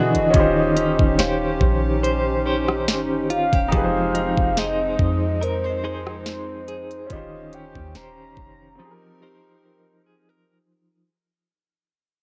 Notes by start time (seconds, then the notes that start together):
Already playing: B2 D3 E3 D4 F#4 G#4 B4 D#5
0.14 E1, closed hi-hat
0.30 D#1 D#3 C#4 F4, kick, closed hi-hat
0.35 C#4 D#4 G4
0.40 C5
0.76 C#4, closed hi-hat
0.99 D#1, kick
1.19 D#1 C#4 G4 C5 F5, snare, closed hi-hat
1.61 A#1, kick
2.03 C5, closed hi-hat
2.46 C#4 G4 C5
2.68 cross-stick
2.88 G1, snare, closed hi-hat
3.30 F4 F5, closed hi-hat
3.53 D#1 G4, kick, closed hi-hat
3.68 F3 G#3 C4 D#4 G4, closed hi-hat
3.72 F1 F3 G#4 F5, kick
3.78 B4
3.84 C5
4.15 D#4, closed hi-hat
4.37 F1, kick
4.57 D#4 G#4 C5 D#5, snare, closed hi-hat
4.99 F2, kick
5.41 A#4 C5, closed hi-hat
5.64 C5
5.70 D#5
5.84 D#4 G#4 C5
6.07 cross-stick
6.26 C5, snare, closed hi-hat
6.68 G#4, closed hi-hat
6.91 closed hi-hat
7.07 D#1 D#3 C#4 F4, kick, closed hi-hat
7.11 C#4 G4 D#5
7.16 C5
7.53 C#4 G5, closed hi-hat
7.75 D#2, kick
7.95 D#1 C#4 G4 C5 A#5, snare, closed hi-hat
8.37 F1, kick
8.75 C4 D#4
8.79 F3 G4 A#4
8.85 G#4
8.91 A#4
9.21 D#4 G4 A#4 C5
10.06 G#4
10.29 A#4